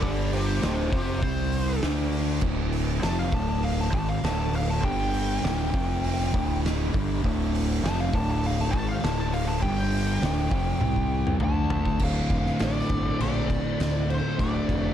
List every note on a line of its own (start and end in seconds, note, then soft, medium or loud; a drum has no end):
0.02 0.59 G1 medium
0.02 0.61 G2 medium
0.02 0.62 D3 loud
0.02 0.62 G3 loud
0.02 0.31 A4 medium
0.02 0.32 D5 medium
0.02 kick loud
0.02 open hi-hat medium
0.33 0.61 G4 medium
0.33 0.63 C5 medium
0.33 open hi-hat medium
0.62 0.91 D1 loud
0.62 0.91 D2 medium
0.62 0.92 A2 loud
0.62 0.92 D3 loud
0.62 0.92 G4 medium
0.62 0.91 C5 medium
0.62 snare loud
0.62 open hi-hat medium
0.92 1.21 F1 medium
0.92 1.21 F2 medium
0.92 1.20 C3 loud
0.92 1.22 F3 loud
0.92 1.21 G4 medium
0.92 1.22 C5 medium
0.92 kick loud
0.92 open hi-hat medium
1.21 1.79 C2 loud
1.21 1.81 C3 medium
1.21 1.81 G3 loud
1.21 1.82 C4 loud
1.21 1.81 C5 medium
1.21 kick loud
1.21 open hi-hat medium
1.52 open hi-hat medium
1.81 2.39 D2 loud
1.81 2.41 D3 loud
1.81 2.42 A3 loud
1.81 2.42 D4 loud
1.81 snare loud
1.81 open hi-hat medium
2.12 open hi-hat medium
2.41 2.99 D1 medium
2.41 3.01 D2 medium
2.41 3.01 A2 loud
2.41 3.02 D3 medium
2.41 kick medium
2.41 crash medium
2.73 open hi-hat medium
3.02 3.31 F1 medium
3.02 3.31 F2 medium
3.02 3.32 C3 medium
3.02 3.32 F3 loud
3.02 3.18 A5 loud
3.02 snare loud
3.02 open hi-hat medium
3.19 3.33 F5 medium
3.32 3.89 D1 medium
3.32 3.91 D2 loud
3.32 3.92 A2 loud
3.32 3.92 D3 loud
3.32 3.48 A5 medium
3.32 kick loud
3.32 open hi-hat medium
3.49 3.63 A5 medium
3.63 3.78 F5 medium
3.63 open hi-hat medium
3.80 3.93 A5 loud
3.80 snare soft
3.92 4.21 G#1 loud
3.92 4.21 G#2 loud
3.92 4.22 D#3 loud
3.92 4.22 G#3 loud
3.92 4.08 A5 medium
3.92 kick loud
3.92 open hi-hat medium
4.09 4.23 F5 medium
4.22 4.79 D1 medium
4.22 4.81 D2 loud
4.22 4.82 A2 loud
4.22 4.82 D3 loud
4.22 4.37 A5 medium
4.22 snare loud
4.22 open hi-hat medium
4.38 4.53 A5 medium
4.53 4.69 F5 medium
4.53 open hi-hat medium
4.69 4.85 A5 medium
4.83 5.40 G1 medium
4.83 5.42 G2 loud
4.83 5.42 D3 loud
4.83 5.42 G3 loud
4.83 6.60 G5 loud
4.83 kick medium
4.83 open hi-hat medium
5.14 open hi-hat medium
5.42 5.71 D1 loud
5.42 5.72 D2 medium
5.42 5.72 A2 medium
5.42 5.72 D3 loud
5.42 snare loud
5.42 open hi-hat medium
5.73 6.30 F1 loud
5.73 6.32 F2 medium
5.73 6.32 C3 loud
5.73 6.32 F3 loud
5.73 kick loud
5.73 open hi-hat medium
6.04 open hi-hat medium
6.21 snare soft
6.33 6.90 D1 medium
6.33 6.92 D2 medium
6.33 6.93 A2 loud
6.33 6.92 D3 loud
6.33 kick loud
6.33 open hi-hat medium
6.65 snare loud
6.65 open hi-hat medium
6.93 7.22 G1 medium
6.93 7.22 G2 loud
6.93 7.22 D3 medium
6.93 7.23 G3 loud
6.93 kick loud
6.93 open hi-hat medium
7.24 7.80 D1 medium
7.24 7.82 D2 medium
7.24 7.82 A2 loud
7.24 7.82 D3 loud
7.24 kick loud
7.24 open hi-hat medium
7.55 open hi-hat medium
7.83 8.11 F1 loud
7.83 8.12 F2 loud
7.83 8.12 C3 loud
7.83 8.13 F3 loud
7.83 7.99 A5 loud
7.83 snare loud
7.83 open hi-hat medium
8.00 8.14 F5 medium
8.13 8.69 D1 loud
8.13 8.72 D2 medium
8.13 8.72 A2 loud
8.13 8.72 D3 loud
8.13 8.28 A5 medium
8.13 kick loud
8.13 open hi-hat medium
8.31 8.44 A5 medium
8.44 8.59 F5 medium
8.44 open hi-hat medium
8.60 8.71 A5 loud
8.60 snare soft
8.72 9.01 G#1 loud
8.72 9.02 G#2 loud
8.72 9.02 D#3 loud
8.72 9.02 G#3 loud
8.72 8.87 A5 medium
8.72 kick loud
8.72 open hi-hat medium
8.89 9.03 F5 medium
9.02 9.58 D1 medium
9.02 9.61 D2 loud
9.02 9.61 A2 loud
9.02 9.62 D3 loud
9.02 9.18 A5 medium
9.02 snare loud
9.02 open hi-hat medium
9.20 9.33 A5 loud
9.33 9.47 F5 medium
9.33 open hi-hat medium
9.47 9.62 A5 medium
9.62 10.18 G1 loud
9.62 10.21 G2 medium
9.62 10.21 D3 loud
9.62 10.21 G3 loud
9.62 11.37 G5 loud
9.62 kick medium
9.62 open hi-hat medium
9.92 open hi-hat medium
10.21 10.49 D1 loud
10.21 10.50 D2 loud
10.21 10.51 A2 loud
10.21 10.51 D3 loud
10.21 snare loud
10.21 open hi-hat medium
10.51 10.79 F1 loud
10.51 10.80 F2 medium
10.51 10.80 C3 loud
10.51 10.80 F3 loud
10.51 kick loud
10.51 open hi-hat medium
10.81 11.37 C2 loud
10.81 11.40 C3 medium
10.81 11.40 G3 medium
10.81 11.40 C4 loud
10.81 high tom medium
10.96 kick medium
11.27 mid tom medium
11.40 11.96 D2 loud
11.40 11.99 D3 loud
11.40 11.99 A3 loud
11.40 11.99 D4 loud
11.40 mid tom medium
11.44 12.04 A5 medium
11.70 floor tom loud
11.86 kick loud
11.99 12.20 D1 loud
11.99 13.18 D2 medium
11.99 13.17 A2 medium
11.99 13.20 D3 loud
11.99 kick loud
11.99 crash loud
11.99 crash medium
12.04 12.63 F5 medium
12.30 12.50 F1 medium
12.30 kick medium
12.30 crash medium
12.46 snare soft
12.59 12.80 A1 medium
12.59 snare loud
12.59 crash medium
12.64 13.21 D5 medium
12.89 13.10 G1 medium
12.89 kick loud
12.89 crash medium
13.19 13.59 A#1 medium
13.19 14.36 D2 medium
13.19 14.36 A2 medium
13.19 14.37 D3 medium
13.19 14.12 D5 medium
13.19 crash medium
13.50 kick medium
13.50 crash medium
13.80 14.19 D2 loud
13.80 snare loud
13.80 crash medium
14.10 14.37 C5 medium
14.10 crash medium
14.38 14.58 D1 loud
14.38 14.94 D2 loud
14.38 14.94 A2 loud
14.38 14.94 D3 loud
14.38 14.94 D5 loud
14.38 kick loud
14.38 crash medium
14.69 14.88 F1 loud
14.69 kick medium
14.69 crash medium